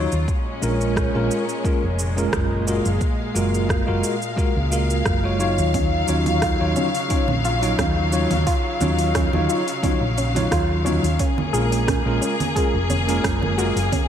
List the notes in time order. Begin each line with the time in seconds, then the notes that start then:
Already playing: C#3 F#3 D#4 F4 C#5
0.12 D#2, cabasa
0.28 A#2 G#3 C#4, kick, cabasa
0.62 A#1 G#3 C#4 F4 A#4, cabasa
0.81 cabasa
0.96 kick, cross-stick, cabasa
1.14 A#1 G#3 C#4 F4 A#4
1.31 cabasa
1.49 cabasa
1.64 G#3 C#4 F4 A#4, kick, cabasa
1.84 F1
1.99 cabasa
2.17 G#3 C#4 F4 A#4, cabasa
2.33 F#1, kick, cross-stick, cabasa
2.67 G#3 F4 F#4 A#4 F5, cabasa
2.85 F#1, cabasa
3.01 kick, cabasa
3.35 F#1 G#3 F4 F#4 A#4, cabasa
3.54 cabasa
3.69 kick, cross-stick, cabasa
3.86 F#1 G#3 F4 F#4 A#4
4.04 cabasa
4.22 cabasa
4.36 G#3 F4 F#4 A#4, kick, cabasa
4.56 C#2
4.71 G#3 F4 F#4 A#4, cabasa
4.90 cabasa
5.06 F#1, kick, cross-stick, cabasa
5.23 G#3 F4 F#4 C#5
5.39 F#3 D#4 F4 C#5, cabasa
5.58 D#2, cabasa
5.74 C#3 F#3 C#4, kick, open hi-hat, low conga, cabasa
6.07 D#2 F#3 C#4 D#4 F4 C#5, cabasa
6.26 open hi-hat, low conga, cabasa
6.42 F4, kick, cross-stick, open hi-hat, cabasa
6.59 D#2 F#3 D#4 F4 C#5
6.76 C#4, low conga, cabasa
6.95 open hi-hat, cabasa
7.09 F#3 C#4 D#4 F4 C#5, kick, open hi-hat, cabasa
7.28 A#1, low conga
7.45 F4, open hi-hat, cabasa
7.61 F#3 D#4 F4 C#5, open hi-hat, cabasa
7.79 D#2 C#4, kick, cross-stick, open hi-hat, low conga, cabasa
8.12 F#3 C#4 D#4 F4 C#5, cabasa
8.31 D#2, open hi-hat, low conga, cabasa
8.47 F4, kick, open hi-hat, cabasa
8.81 D#2 F#3 C#4 D#4 F4 C#5, low conga, cabasa
8.99 open hi-hat, cabasa
9.15 C#4, kick, cross-stick, open hi-hat, cabasa
9.33 D#2 F#3 D#4 F4 C#5, low conga
9.49 F4, cabasa
9.68 open hi-hat, cabasa
9.83 F#3 C#4 D#4 F4 C#5, kick, open hi-hat, low conga, cabasa
10.01 A#1
10.18 C#4, open hi-hat, cabasa
10.35 F#3 D#4 F4 C#5, open hi-hat, low conga, cabasa
10.51 D#2 F4, kick, cross-stick, open hi-hat, cabasa
10.84 F#3 C#4 D#4 F4 C#5, low conga, cabasa
11.03 D#2, open hi-hat, cabasa
11.18 A#3 C#4 G#4, kick, open hi-hat, cabasa
11.38 low conga
11.53 A#1 G#3 C#4 F4 G#4 A#4, cabasa
11.72 open hi-hat, cabasa
11.87 C#4, kick, cross-stick, open hi-hat, low conga, cabasa
12.06 A#1 G#3 C#4 F4 A#4
12.22 C#4, cabasa
12.40 open hi-hat, low conga, cabasa
12.56 G#3 C#4 F4 G#4 A#4, kick, open hi-hat, cabasa
12.74 F1
12.90 C#4, open hi-hat, low conga, cabasa
13.08 G#3 C#4 F4 A#4, open hi-hat, cabasa
13.24 F#1 C#4, kick, cross-stick, open hi-hat, cabasa
13.43 low conga
13.58 G#3 F4 F#4 A#4, cabasa
13.76 F#1, open hi-hat, cabasa
13.92 C#4, kick, open hi-hat, low conga, cabasa